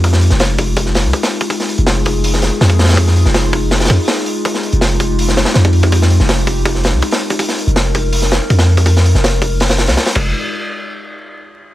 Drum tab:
CC |--------------------------------|--------------------------------|--------------------------------|--------------------------------|
HH |o---o---o---o---o---o---o-o---o-|o---o-x-o---o---o---o---o---oooo|o---o---o---o---o-ooo---o---o---|o---o-x-o---o---o---o-o-o---o---|
SD |--o---o-o---------o-o-----o-----|--o-----o---------o-o---o---oooo|--o---o-o-------o-oo----o-o-----|--o-----o---------o-o-o-o-------|
BD |o-----------o---o-------o-----o-|o-----------o-------------o-----|o-----------o-------o-----------|o-----------o-------------o---o-|

CC |--------------------------------|--------------------------------|----------------------------x---|--------------------------------|
HH |o---o---o---o---o---o---o-o---o-|o---o-x-o---o---o---o---o-o---o-|o---o---o---o---o-o-o-o-o-o-----|--------------------------------|
SD |--o---o-o---------o-o-----o-----|--o-----o---------o-o-----o-----|--o---o-o-------o-o-o-o-o-o-----|--------------------------------|
BD |o-----------o---o-------o-----o-|o-----------o-----------o-----o-|o-----------o---------------o---|--------------------------------|